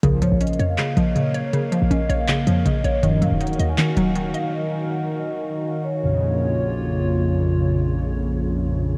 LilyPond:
<<
  \new Staff \with { instrumentName = "Vibraphone" } { \time 4/4 \key bes \minor \tempo 4 = 160 bes'8 des''8 ees''8. f''8. ees''4 des''8 | bes'8 f''8 ees''8. f''4~ f''16 ees''8 des''8 | r8 f''8 ges''8. aes''8. ges''4 f''8 | ees''8 aes''8 ges''8. ees''4.~ ees''16 des''8 |
des''2. r4 | r1 | }
  \new Staff \with { instrumentName = "Analog synth pad" } { \time 4/4 \key bes \minor <bes bes' des'' f''>1~ | <bes bes' des'' f''>1 | <ees ees' ges' bes'>1~ | <ees ees' ges' bes'>1 |
<bes, bes f' des''>1~ | <bes, bes f' des''>1 | }
  \new Staff \with { instrumentName = "Synth pluck" } { \clef bass \time 4/4 \key bes \minor des8 f8 des'8 des''8 des8 f8 des8 des''8 | des8 f8 des'8 des''8 des8 f8 des8 des''8 | ees8 ges8 ees'8 ees''8 ees8 ges8 ees8 ees''8~ | ees''2 r2 |
r1 | r1 | }
  \new Staff \with { instrumentName = "Analog polysynth" } { \clef bass \time 4/4 \key bes \minor <des, bes, f>4 r2. | r1 | <bes,, ges, ees>4 r2. | r1 |
<bes,, f, des>1~ | <bes,, f, des>1 | }
  \new Staff \with { instrumentName = "808-style bass" } { \clef bass \time 4/4 \key bes \minor bes,,8 bes,16 bes,,8. f,8 r8 bes,,8 bes,8. r16 | r8. bes,,16 bes,,8 bes,,4 f,8 bes,,8 bes,,8 | ees,,8 bes,16 ees,,8. ees,8 r8 ees,,4 r8 | r1 |
r1 | r1 | }
  \new DrumStaff \with { instrumentName = "Drums" } \drummode { \time 4/4 hh8 hh8 \tuplet 3/2 { hh16 hh16 hh16 hh16 r16 r16 } <hc hh>8 hh8 hh8 hh8 | hh8 hh8 hh8 hh8 <hc hh>8 hh8 hh8 hh8 | hh8 hh8 \tuplet 3/2 { hh16 hh16 hh16 hh16 r16 r16 } <hc hh>8 hh8 hh8 hh8 | r4 r4 r4 r4 |
r4 r4 r4 r4 | r4 r4 r4 r4 | }
>>